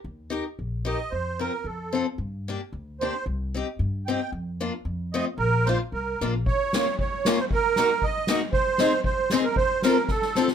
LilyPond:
<<
  \new Staff \with { instrumentName = "Accordion" } { \time 2/4 \key bes \major \tempo 4 = 113 r4. ees''8 | c''8 bes'8 a'8. r16 | r4. c''8 | r4. g''8 |
r4. ees''8 | bes'8 c''8 bes'8. r16 | \key bes \minor des''4 des''8. c''16 | bes'4 ees''8. r16 |
c''4 c''8. bes'16 | c''8 bes'8 a'8. r16 | }
  \new Staff \with { instrumentName = "Steel-string acoustic guitar" } { \time 2/4 \key bes \major r8 <ees' g' bes'>8 r8 <ees' g' bes'>8 | r8 <c' f' bes'>8 r8 <c' f' a'>8 | r8 <bes d' g'>8 r8 <bes d' g'>8 | r8 <c' ees' g'>8 r8 <c' ees' g'>8 |
r8 <bes d' f'>8 r8 <a c' f'>8 | r8 <bes d' f'>8 r8 <bes d' f'>8 | \key bes \minor r8 <bes des' f'>8 r8 <bes des' f'>8 | r8 <bes ees' ges'>8 r8 <bes ees' ges'>8 |
r8 <c' ees' aes'>8 r8 <c' ees' aes'>8 | r8 <c' f' a'>8 r8 <c' f' a'>8 | }
  \new Staff \with { instrumentName = "Upright bass" } { \clef bass \time 2/4 \key bes \major ees,4 bes,,4 | f,4 f,4 | g,4 d,4 | c,4 g,4 |
f,4 f,4 | bes,,4 c,8 bes,,8 | \key bes \minor r2 | r2 |
r2 | r2 | }
  \new DrumStaff \with { instrumentName = "Drums" } \drummode { \time 2/4 r4 r4 | r4 r4 | r4 r4 | r4 r4 |
r4 r4 | r4 r4 | bd8 <hhp sn>8 bd8 <hhp sn>8 | bd8 <hhp sn>8 bd8 <hhp sn>8 |
bd8 <hhp sn>8 bd8 <hhp sn>8 | bd8 <hhp sn>8 <bd sn>16 sn16 <hhp sn>16 sn16 | }
>>